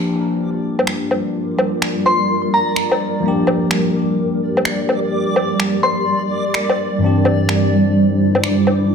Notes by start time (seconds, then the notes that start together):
Already playing: F3 G3 A#3 D4 F4 G4 A#4 D5
0.79 low woodblock
0.87 finger snap
1.11 low woodblock
1.58 low woodblock
1.82 finger snap
2.06 C6, low woodblock
2.54 A#5
2.76 finger snap
2.92 low woodblock
3.20 F3 A#3 G4
3.25 D4 G4
3.47 low woodblock
3.71 finger snap
4.57 low woodblock
4.65 finger snap
4.89 low woodblock
5.36 low woodblock
5.60 finger snap
5.83 C6, low woodblock
6.54 finger snap
6.69 low woodblock
6.98 G2 E3 D4 E4 C5
7.02 C4 D4 G4
7.25 low woodblock
7.49 finger snap
8.35 low woodblock
8.44 finger snap
8.67 low woodblock